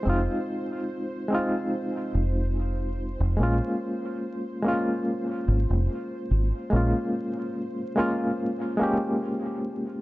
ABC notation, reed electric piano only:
X:1
M:4/4
L:1/8
Q:"Swing 16ths" 1/4=72
K:Bbdor
V:1 name="Reed electric piano"
[A,CEF]3 [A,CEF]4- [A,CEF] | [A,B,DF]3 [A,B,DF]4- [A,B,DF] | [A,B,DF]3 [A,B,DF]2 [A,B,DG]3 |]